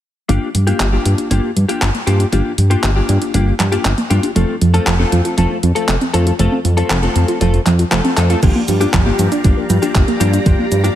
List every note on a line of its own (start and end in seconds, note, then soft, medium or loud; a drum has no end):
0.29 0.38 G1 medium
0.29 0.34 F3 medium
0.29 0.48 A#3 medium
0.29 0.48 D4 medium
0.29 0.48 F4 medium
0.29 0.48 G4 medium
0.29 kick loud
0.29 closed hi-hat medium
0.42 0.50 A#3 medium
0.55 0.73 G2 medium
0.55 0.59 F3 medium
0.55 closed hi-hat medium
0.67 0.86 A#3 medium
0.67 0.86 D4 medium
0.67 0.86 F4 medium
0.67 0.86 G4 medium
0.67 closed hi-hat soft
0.80 0.98 G1 medium
0.80 0.88 F3 medium
0.80 kick loud
0.80 clap loud
0.80 closed hi-hat medium
0.92 0.97 A#3 loud
0.92 1.28 A#3 medium
0.92 1.28 D4 medium
0.92 1.28 F4 medium
0.92 1.28 G4 medium
1.05 1.14 G2 medium
1.05 1.17 F3 medium
1.05 closed hi-hat medium
1.18 1.26 D4 loud
1.18 closed hi-hat soft
1.30 1.40 G1 medium
1.30 1.35 F3 medium
1.30 1.50 A#3 medium
1.30 1.50 D4 medium
1.30 1.50 F4 medium
1.30 1.50 G4 medium
1.30 kick loud
1.30 closed hi-hat medium
1.44 1.51 A#3 medium
1.56 1.65 G2 medium
1.56 1.61 F3 medium
1.56 closed hi-hat medium
1.68 1.88 A#3 medium
1.68 1.77 D4 medium
1.68 1.88 D4 medium
1.68 1.88 F4 medium
1.68 1.88 G4 medium
1.68 closed hi-hat medium
1.82 1.91 G1 medium
1.82 1.89 F3 medium
1.82 kick loud
1.82 clap loud
1.82 closed hi-hat medium
1.94 1.99 A#3 loud
1.94 closed hi-hat soft
2.07 2.25 G2 medium
2.07 2.19 F3 medium
2.07 2.26 A#3 medium
2.07 2.26 D4 medium
2.07 2.26 F4 medium
2.07 2.26 G4 medium
2.07 closed hi-hat medium
2.20 2.28 D4 loud
2.20 closed hi-hat medium
2.32 2.42 G1 medium
2.32 2.37 F3 medium
2.32 2.52 A#3 medium
2.32 2.51 D4 medium
2.32 2.51 F4 medium
2.32 2.51 G4 medium
2.32 kick loud
2.32 closed hi-hat medium
2.45 2.53 A#3 medium
2.58 2.76 G2 medium
2.58 2.63 F3 medium
2.58 closed hi-hat medium
2.70 2.90 A#3 medium
2.70 2.78 D4 medium
2.70 2.90 D4 medium
2.70 2.90 F4 medium
2.70 2.90 G4 medium
2.70 closed hi-hat medium
2.83 3.01 G1 medium
2.83 2.91 F3 medium
2.83 kick loud
2.83 clap loud
2.83 closed hi-hat medium
2.96 3.01 A#3 medium
2.96 3.31 A#3 medium
2.96 3.31 D4 medium
2.96 3.31 F4 medium
2.96 3.31 G4 medium
3.09 3.18 G2 loud
3.09 3.20 F3 medium
3.09 closed hi-hat medium
3.22 3.29 D4 loud
3.22 closed hi-hat soft
3.34 3.52 G1 medium
3.34 3.39 F3 medium
3.34 3.53 A#3 medium
3.34 3.53 D4 medium
3.34 3.53 F4 medium
3.34 3.53 G4 medium
3.34 kick loud
3.34 closed hi-hat medium
3.47 3.55 A#3 medium
3.60 3.77 G2 medium
3.60 3.64 F3 loud
3.60 clap medium
3.60 closed hi-hat medium
3.72 3.91 A#3 medium
3.72 3.80 D4 medium
3.72 3.91 D4 medium
3.72 3.91 F4 medium
3.72 3.91 G4 medium
3.72 closed hi-hat medium
3.85 3.94 G1 medium
3.85 3.93 F3 medium
3.85 kick loud
3.85 clap loud
3.85 closed hi-hat medium
3.98 4.02 A#3 loud
3.98 closed hi-hat soft
4.10 4.19 G2 medium
4.10 4.22 F3 medium
4.10 4.29 A#3 medium
4.10 4.29 D4 medium
4.10 4.29 F4 medium
4.10 4.29 G4 medium
4.10 closed hi-hat medium
4.23 4.31 D4 loud
4.23 closed hi-hat medium
4.35 4.45 F1 medium
4.35 4.41 F3 medium
4.35 4.55 A3 medium
4.35 4.55 C4 medium
4.35 4.55 F4 medium
4.35 4.55 A4 medium
4.35 kick loud
4.35 closed hi-hat medium
4.49 4.56 C4 medium
4.61 4.79 F2 medium
4.61 4.66 F3 loud
4.61 closed hi-hat medium
4.74 4.93 A3 medium
4.74 4.93 C4 medium
4.74 4.93 F4 medium
4.74 4.82 F4 medium
4.74 4.93 A4 loud
4.74 closed hi-hat soft
4.87 5.05 F1 medium
4.87 4.94 F3 medium
4.87 kick loud
4.87 clap loud
4.87 closed hi-hat medium
4.99 5.35 A3 medium
4.99 5.04 C4 loud
4.99 5.35 C4 medium
4.99 5.35 F4 medium
4.99 5.35 A4 medium
5.12 5.21 F2 loud
5.12 5.24 F3 medium
5.12 closed hi-hat medium
5.25 5.33 F4 medium
5.25 closed hi-hat medium
5.37 5.47 F1 medium
5.37 5.42 F3 medium
5.37 5.57 A3 medium
5.37 5.57 C4 medium
5.37 5.57 F4 medium
5.37 5.57 A4 medium
5.37 kick loud
5.37 closed hi-hat medium
5.50 5.58 C4 medium
5.63 5.72 F2 loud
5.63 5.68 F3 loud
5.63 closed hi-hat medium
5.75 5.95 A3 medium
5.75 5.95 C4 medium
5.75 5.83 F4 medium
5.75 5.95 F4 medium
5.75 5.95 A4 medium
5.75 closed hi-hat medium
5.88 5.97 F1 medium
5.88 5.96 F3 medium
5.88 kick loud
5.88 clap loud
5.88 closed hi-hat medium
6.01 6.06 C4 loud
6.01 closed hi-hat soft
6.13 6.32 F2 medium
6.13 6.25 F3 medium
6.13 6.33 A3 medium
6.13 6.33 C4 medium
6.13 6.33 F4 medium
6.13 6.33 A4 medium
6.13 closed hi-hat medium
6.27 6.34 F4 loud
6.27 closed hi-hat medium
6.39 6.48 F1 medium
6.39 6.44 F3 medium
6.39 6.58 A3 medium
6.39 6.58 C4 medium
6.39 6.58 F4 medium
6.39 6.58 A4 medium
6.39 kick loud
6.39 closed hi-hat medium
6.52 6.60 C4 medium
6.65 6.83 F2 medium
6.65 6.69 F3 medium
6.65 closed hi-hat medium
6.77 6.96 A3 medium
6.77 6.96 C4 medium
6.77 6.96 F4 medium
6.77 6.85 F4 medium
6.77 6.96 A4 medium
6.77 closed hi-hat soft
6.90 7.08 F1 medium
6.90 6.98 F3 medium
6.90 kick loud
6.90 clap loud
6.90 closed hi-hat medium
7.02 7.38 A3 medium
7.02 7.08 C4 loud
7.02 7.38 C4 medium
7.02 7.38 F4 medium
7.02 7.38 A4 medium
7.02 closed hi-hat soft
7.16 7.25 F2 medium
7.16 7.27 F3 medium
7.16 closed hi-hat medium
7.28 7.36 F4 loud
7.28 closed hi-hat soft
7.40 7.59 F1 medium
7.40 7.46 F3 loud
7.40 7.60 A3 medium
7.40 7.60 C4 medium
7.40 7.60 F4 medium
7.40 7.60 A4 medium
7.40 kick loud
7.40 closed hi-hat medium
7.54 7.61 C4 medium
7.54 closed hi-hat soft
7.66 7.84 F2 medium
7.66 7.71 F3 loud
7.66 clap medium
7.66 closed hi-hat medium
7.79 7.87 F4 medium
7.79 closed hi-hat soft
7.91 8.01 F1 medium
7.91 8.00 F3 medium
7.91 8.14 A3 medium
7.91 8.14 C4 medium
7.91 8.14 F4 medium
7.91 8.14 A4 medium
7.91 kick loud
7.91 clap loud
7.91 closed hi-hat medium
8.05 8.09 C4 loud
8.05 closed hi-hat soft
8.17 8.35 F2 medium
8.17 8.29 F3 medium
8.17 8.28 A3 medium
8.17 8.28 C4 medium
8.17 8.28 F4 medium
8.17 8.28 A4 loud
8.17 clap medium
8.17 closed hi-hat medium
8.30 8.40 A3 medium
8.30 8.40 C4 medium
8.30 8.40 F4 medium
8.30 8.38 F4 loud
8.30 8.40 A4 loud
8.30 closed hi-hat soft
8.42 8.52 G1 loud
8.42 8.47 F3 loud
8.42 8.62 A#3 medium
8.42 8.62 D4 medium
8.42 8.62 F4 medium
8.42 10.95 G4 medium
8.42 8.62 G4 medium
8.42 10.95 D5 medium
8.42 10.95 F5 medium
8.42 10.95 A#5 medium
8.42 kick loud
8.42 closed hi-hat medium
8.42 crash medium
8.42 cabasa soft
8.56 8.63 A#3 medium
8.68 8.86 G2 medium
8.68 8.73 F3 loud
8.68 closed hi-hat medium
8.68 cabasa medium
8.80 9.00 A#3 medium
8.80 8.89 D4 medium
8.80 9.00 D4 medium
8.80 9.00 F4 medium
8.80 9.00 G4 medium
8.80 closed hi-hat medium
8.80 cabasa soft
8.94 9.11 G1 medium
8.94 9.01 F3 medium
8.94 kick loud
8.94 clap loud
8.94 closed hi-hat medium
8.94 cabasa soft
9.06 9.11 A#3 loud
9.06 9.41 A#3 medium
9.06 9.41 D4 medium
9.06 9.41 F4 medium
9.06 9.41 G4 medium
9.19 9.28 G2 loud
9.19 9.31 F3 medium
9.19 closed hi-hat medium
9.19 cabasa medium
9.32 9.39 D4 loud
9.32 closed hi-hat medium
9.32 cabasa soft
9.44 9.53 G1 medium
9.44 9.49 F3 loud
9.44 9.63 A#3 medium
9.44 9.63 D4 medium
9.44 9.63 F4 medium
9.44 9.63 G4 medium
9.44 kick loud
9.44 closed hi-hat medium
9.44 cabasa soft
9.57 9.65 A#3 medium
9.70 9.79 G2 loud
9.70 9.74 F3 loud
9.70 closed hi-hat medium
9.70 cabasa medium
9.82 10.02 A#3 medium
9.82 9.90 D4 medium
9.82 10.02 D4 medium
9.82 10.02 F4 medium
9.82 10.02 G4 medium
9.82 closed hi-hat medium
9.82 cabasa soft
9.95 10.04 G1 medium
9.95 10.03 F3 medium
9.95 kick loud
9.95 clap loud
9.95 closed hi-hat medium
9.95 cabasa soft
10.08 10.13 A#3 loud
10.08 closed hi-hat soft
10.20 10.39 G2 loud
10.20 10.32 F3 medium
10.20 10.40 A#3 medium
10.20 10.40 D4 medium
10.20 10.40 F4 medium
10.20 10.40 G4 medium
10.20 closed hi-hat medium
10.20 cabasa medium
10.33 10.41 D4 loud
10.33 closed hi-hat medium
10.33 cabasa soft
10.46 10.55 G1 medium
10.46 10.51 F3 loud
10.46 10.65 A#3 medium
10.46 10.65 D4 medium
10.46 10.65 F4 medium
10.46 10.65 G4 medium
10.46 kick loud
10.46 closed hi-hat medium
10.46 cabasa soft
10.59 10.66 A#3 medium
10.71 10.89 G2 medium
10.71 10.76 F3 loud
10.71 closed hi-hat medium
10.71 cabasa medium
10.84 10.95 A#3 medium
10.84 10.92 D4 medium
10.84 10.95 D4 medium
10.84 10.95 F4 medium
10.84 10.95 G4 medium
10.84 closed hi-hat medium
10.84 cabasa soft